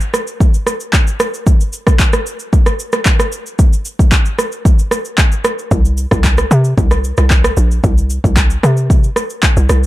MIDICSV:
0, 0, Header, 1, 3, 480
1, 0, Start_track
1, 0, Tempo, 530973
1, 1324, Time_signature, 4, 2, 24, 8
1, 8918, End_track
2, 0, Start_track
2, 0, Title_t, "Log drum bass"
2, 0, Program_c, 0, 39
2, 5164, Note_on_c, 0, 36, 111
2, 5482, Note_off_c, 0, 36, 0
2, 5529, Note_on_c, 0, 36, 104
2, 5838, Note_off_c, 0, 36, 0
2, 5884, Note_on_c, 0, 48, 104
2, 6093, Note_off_c, 0, 48, 0
2, 6125, Note_on_c, 0, 36, 97
2, 6442, Note_off_c, 0, 36, 0
2, 6489, Note_on_c, 0, 36, 93
2, 6798, Note_off_c, 0, 36, 0
2, 6844, Note_on_c, 0, 34, 93
2, 7053, Note_off_c, 0, 34, 0
2, 7085, Note_on_c, 0, 36, 110
2, 7402, Note_off_c, 0, 36, 0
2, 7450, Note_on_c, 0, 36, 91
2, 7759, Note_off_c, 0, 36, 0
2, 7805, Note_on_c, 0, 48, 94
2, 8222, Note_off_c, 0, 48, 0
2, 8649, Note_on_c, 0, 36, 87
2, 8750, Note_off_c, 0, 36, 0
2, 8765, Note_on_c, 0, 36, 92
2, 8918, Note_off_c, 0, 36, 0
2, 8918, End_track
3, 0, Start_track
3, 0, Title_t, "Drums"
3, 6, Note_on_c, 9, 82, 51
3, 96, Note_off_c, 9, 82, 0
3, 124, Note_on_c, 9, 37, 92
3, 127, Note_on_c, 9, 82, 88
3, 214, Note_off_c, 9, 37, 0
3, 217, Note_off_c, 9, 82, 0
3, 246, Note_on_c, 9, 82, 55
3, 336, Note_off_c, 9, 82, 0
3, 365, Note_on_c, 9, 36, 109
3, 369, Note_on_c, 9, 82, 64
3, 456, Note_off_c, 9, 36, 0
3, 460, Note_off_c, 9, 82, 0
3, 488, Note_on_c, 9, 82, 51
3, 578, Note_off_c, 9, 82, 0
3, 602, Note_on_c, 9, 37, 86
3, 607, Note_on_c, 9, 82, 84
3, 692, Note_off_c, 9, 37, 0
3, 697, Note_off_c, 9, 82, 0
3, 725, Note_on_c, 9, 82, 61
3, 815, Note_off_c, 9, 82, 0
3, 843, Note_on_c, 9, 39, 92
3, 844, Note_on_c, 9, 36, 87
3, 844, Note_on_c, 9, 82, 68
3, 934, Note_off_c, 9, 36, 0
3, 934, Note_off_c, 9, 39, 0
3, 935, Note_off_c, 9, 82, 0
3, 971, Note_on_c, 9, 82, 55
3, 1061, Note_off_c, 9, 82, 0
3, 1084, Note_on_c, 9, 37, 101
3, 1084, Note_on_c, 9, 82, 86
3, 1174, Note_off_c, 9, 37, 0
3, 1174, Note_off_c, 9, 82, 0
3, 1212, Note_on_c, 9, 82, 51
3, 1303, Note_off_c, 9, 82, 0
3, 1325, Note_on_c, 9, 36, 110
3, 1326, Note_on_c, 9, 82, 73
3, 1415, Note_off_c, 9, 36, 0
3, 1416, Note_off_c, 9, 82, 0
3, 1452, Note_on_c, 9, 82, 55
3, 1542, Note_off_c, 9, 82, 0
3, 1562, Note_on_c, 9, 82, 90
3, 1652, Note_off_c, 9, 82, 0
3, 1687, Note_on_c, 9, 37, 88
3, 1690, Note_on_c, 9, 36, 103
3, 1697, Note_on_c, 9, 82, 48
3, 1777, Note_off_c, 9, 37, 0
3, 1780, Note_off_c, 9, 36, 0
3, 1787, Note_off_c, 9, 82, 0
3, 1802, Note_on_c, 9, 36, 92
3, 1802, Note_on_c, 9, 82, 77
3, 1806, Note_on_c, 9, 39, 97
3, 1892, Note_off_c, 9, 36, 0
3, 1893, Note_off_c, 9, 82, 0
3, 1896, Note_off_c, 9, 39, 0
3, 1926, Note_on_c, 9, 82, 54
3, 1928, Note_on_c, 9, 37, 95
3, 2016, Note_off_c, 9, 82, 0
3, 2019, Note_off_c, 9, 37, 0
3, 2047, Note_on_c, 9, 82, 88
3, 2138, Note_off_c, 9, 82, 0
3, 2165, Note_on_c, 9, 82, 54
3, 2256, Note_off_c, 9, 82, 0
3, 2285, Note_on_c, 9, 36, 113
3, 2288, Note_on_c, 9, 82, 62
3, 2376, Note_off_c, 9, 36, 0
3, 2379, Note_off_c, 9, 82, 0
3, 2407, Note_on_c, 9, 37, 85
3, 2407, Note_on_c, 9, 82, 49
3, 2497, Note_off_c, 9, 37, 0
3, 2498, Note_off_c, 9, 82, 0
3, 2526, Note_on_c, 9, 82, 84
3, 2616, Note_off_c, 9, 82, 0
3, 2643, Note_on_c, 9, 82, 55
3, 2648, Note_on_c, 9, 37, 92
3, 2734, Note_off_c, 9, 82, 0
3, 2739, Note_off_c, 9, 37, 0
3, 2763, Note_on_c, 9, 36, 90
3, 2763, Note_on_c, 9, 39, 89
3, 2764, Note_on_c, 9, 82, 65
3, 2853, Note_off_c, 9, 39, 0
3, 2854, Note_off_c, 9, 36, 0
3, 2854, Note_off_c, 9, 82, 0
3, 2889, Note_on_c, 9, 37, 94
3, 2890, Note_on_c, 9, 82, 58
3, 2979, Note_off_c, 9, 37, 0
3, 2980, Note_off_c, 9, 82, 0
3, 3003, Note_on_c, 9, 82, 89
3, 3093, Note_off_c, 9, 82, 0
3, 3132, Note_on_c, 9, 82, 51
3, 3222, Note_off_c, 9, 82, 0
3, 3244, Note_on_c, 9, 36, 113
3, 3245, Note_on_c, 9, 82, 75
3, 3335, Note_off_c, 9, 36, 0
3, 3336, Note_off_c, 9, 82, 0
3, 3371, Note_on_c, 9, 82, 56
3, 3462, Note_off_c, 9, 82, 0
3, 3481, Note_on_c, 9, 82, 90
3, 3572, Note_off_c, 9, 82, 0
3, 3610, Note_on_c, 9, 36, 99
3, 3617, Note_on_c, 9, 82, 51
3, 3700, Note_off_c, 9, 36, 0
3, 3707, Note_off_c, 9, 82, 0
3, 3722, Note_on_c, 9, 36, 89
3, 3723, Note_on_c, 9, 82, 73
3, 3726, Note_on_c, 9, 39, 97
3, 3812, Note_off_c, 9, 36, 0
3, 3813, Note_off_c, 9, 82, 0
3, 3817, Note_off_c, 9, 39, 0
3, 3847, Note_on_c, 9, 82, 50
3, 3937, Note_off_c, 9, 82, 0
3, 3965, Note_on_c, 9, 37, 92
3, 3968, Note_on_c, 9, 82, 85
3, 4055, Note_off_c, 9, 37, 0
3, 4059, Note_off_c, 9, 82, 0
3, 4086, Note_on_c, 9, 82, 55
3, 4177, Note_off_c, 9, 82, 0
3, 4205, Note_on_c, 9, 36, 115
3, 4210, Note_on_c, 9, 82, 65
3, 4296, Note_off_c, 9, 36, 0
3, 4300, Note_off_c, 9, 82, 0
3, 4329, Note_on_c, 9, 82, 52
3, 4419, Note_off_c, 9, 82, 0
3, 4441, Note_on_c, 9, 37, 90
3, 4446, Note_on_c, 9, 82, 85
3, 4531, Note_off_c, 9, 37, 0
3, 4537, Note_off_c, 9, 82, 0
3, 4564, Note_on_c, 9, 82, 57
3, 4655, Note_off_c, 9, 82, 0
3, 4683, Note_on_c, 9, 36, 91
3, 4683, Note_on_c, 9, 39, 93
3, 4684, Note_on_c, 9, 82, 68
3, 4774, Note_off_c, 9, 36, 0
3, 4774, Note_off_c, 9, 39, 0
3, 4775, Note_off_c, 9, 82, 0
3, 4810, Note_on_c, 9, 82, 54
3, 4901, Note_off_c, 9, 82, 0
3, 4923, Note_on_c, 9, 37, 98
3, 4923, Note_on_c, 9, 82, 88
3, 5013, Note_off_c, 9, 37, 0
3, 5013, Note_off_c, 9, 82, 0
3, 5052, Note_on_c, 9, 82, 48
3, 5142, Note_off_c, 9, 82, 0
3, 5164, Note_on_c, 9, 36, 109
3, 5165, Note_on_c, 9, 82, 71
3, 5255, Note_off_c, 9, 36, 0
3, 5255, Note_off_c, 9, 82, 0
3, 5291, Note_on_c, 9, 82, 57
3, 5381, Note_off_c, 9, 82, 0
3, 5401, Note_on_c, 9, 82, 92
3, 5491, Note_off_c, 9, 82, 0
3, 5526, Note_on_c, 9, 37, 87
3, 5529, Note_on_c, 9, 36, 106
3, 5536, Note_on_c, 9, 82, 51
3, 5616, Note_off_c, 9, 37, 0
3, 5620, Note_off_c, 9, 36, 0
3, 5626, Note_off_c, 9, 82, 0
3, 5641, Note_on_c, 9, 36, 88
3, 5642, Note_on_c, 9, 82, 75
3, 5645, Note_on_c, 9, 39, 97
3, 5732, Note_off_c, 9, 36, 0
3, 5732, Note_off_c, 9, 82, 0
3, 5736, Note_off_c, 9, 39, 0
3, 5766, Note_on_c, 9, 82, 52
3, 5769, Note_on_c, 9, 37, 94
3, 5856, Note_off_c, 9, 82, 0
3, 5859, Note_off_c, 9, 37, 0
3, 5887, Note_on_c, 9, 82, 85
3, 5978, Note_off_c, 9, 82, 0
3, 6006, Note_on_c, 9, 82, 55
3, 6096, Note_off_c, 9, 82, 0
3, 6125, Note_on_c, 9, 36, 115
3, 6129, Note_on_c, 9, 82, 67
3, 6216, Note_off_c, 9, 36, 0
3, 6219, Note_off_c, 9, 82, 0
3, 6247, Note_on_c, 9, 37, 87
3, 6248, Note_on_c, 9, 82, 50
3, 6337, Note_off_c, 9, 37, 0
3, 6338, Note_off_c, 9, 82, 0
3, 6366, Note_on_c, 9, 82, 84
3, 6456, Note_off_c, 9, 82, 0
3, 6484, Note_on_c, 9, 82, 58
3, 6489, Note_on_c, 9, 37, 92
3, 6574, Note_off_c, 9, 82, 0
3, 6579, Note_off_c, 9, 37, 0
3, 6603, Note_on_c, 9, 36, 88
3, 6604, Note_on_c, 9, 39, 91
3, 6605, Note_on_c, 9, 82, 68
3, 6694, Note_off_c, 9, 36, 0
3, 6694, Note_off_c, 9, 39, 0
3, 6695, Note_off_c, 9, 82, 0
3, 6729, Note_on_c, 9, 37, 98
3, 6731, Note_on_c, 9, 82, 59
3, 6820, Note_off_c, 9, 37, 0
3, 6821, Note_off_c, 9, 82, 0
3, 6843, Note_on_c, 9, 82, 88
3, 6934, Note_off_c, 9, 82, 0
3, 6973, Note_on_c, 9, 82, 49
3, 7063, Note_off_c, 9, 82, 0
3, 7085, Note_on_c, 9, 36, 113
3, 7086, Note_on_c, 9, 82, 73
3, 7175, Note_off_c, 9, 36, 0
3, 7176, Note_off_c, 9, 82, 0
3, 7211, Note_on_c, 9, 82, 58
3, 7302, Note_off_c, 9, 82, 0
3, 7322, Note_on_c, 9, 82, 94
3, 7412, Note_off_c, 9, 82, 0
3, 7450, Note_on_c, 9, 36, 99
3, 7457, Note_on_c, 9, 82, 48
3, 7540, Note_off_c, 9, 36, 0
3, 7547, Note_off_c, 9, 82, 0
3, 7562, Note_on_c, 9, 36, 89
3, 7563, Note_on_c, 9, 82, 74
3, 7566, Note_on_c, 9, 39, 96
3, 7652, Note_off_c, 9, 36, 0
3, 7653, Note_off_c, 9, 82, 0
3, 7657, Note_off_c, 9, 39, 0
3, 7687, Note_on_c, 9, 82, 53
3, 7777, Note_off_c, 9, 82, 0
3, 7805, Note_on_c, 9, 37, 91
3, 7808, Note_on_c, 9, 82, 87
3, 7895, Note_off_c, 9, 37, 0
3, 7899, Note_off_c, 9, 82, 0
3, 7927, Note_on_c, 9, 82, 53
3, 8018, Note_off_c, 9, 82, 0
3, 8046, Note_on_c, 9, 36, 113
3, 8050, Note_on_c, 9, 82, 66
3, 8136, Note_off_c, 9, 36, 0
3, 8140, Note_off_c, 9, 82, 0
3, 8169, Note_on_c, 9, 82, 52
3, 8259, Note_off_c, 9, 82, 0
3, 8282, Note_on_c, 9, 37, 91
3, 8287, Note_on_c, 9, 82, 81
3, 8372, Note_off_c, 9, 37, 0
3, 8377, Note_off_c, 9, 82, 0
3, 8406, Note_on_c, 9, 82, 60
3, 8496, Note_off_c, 9, 82, 0
3, 8524, Note_on_c, 9, 36, 90
3, 8525, Note_on_c, 9, 39, 95
3, 8526, Note_on_c, 9, 82, 68
3, 8614, Note_off_c, 9, 36, 0
3, 8615, Note_off_c, 9, 39, 0
3, 8616, Note_off_c, 9, 82, 0
3, 8651, Note_on_c, 9, 82, 59
3, 8741, Note_off_c, 9, 82, 0
3, 8763, Note_on_c, 9, 37, 97
3, 8763, Note_on_c, 9, 82, 93
3, 8854, Note_off_c, 9, 37, 0
3, 8854, Note_off_c, 9, 82, 0
3, 8918, End_track
0, 0, End_of_file